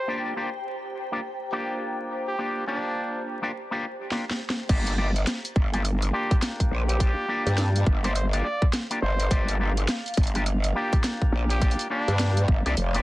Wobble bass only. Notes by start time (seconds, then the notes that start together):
4.69 G1
5.56 G1
6.71 A#1
7.46 G2
7.86 G1
9.02 G1
9.31 G1
10.17 G1
11.32 A#1
12.08 G2
12.48 G1
12.66 C2
12.77 F1